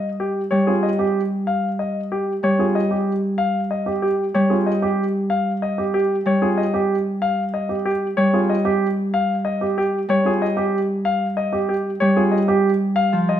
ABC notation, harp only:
X:1
M:6/4
L:1/8
Q:1/4=188
K:Dblyd
V:1 name="Harp" clef=bass
G,3 G,8- G,- | G,3 G,8- G,- | G,3 G,8- G,- | G,3 G,8- G,- |
G,3 G,8- G,- | G,3 G,8- G,- | G,3 G,6- G, F,2 |]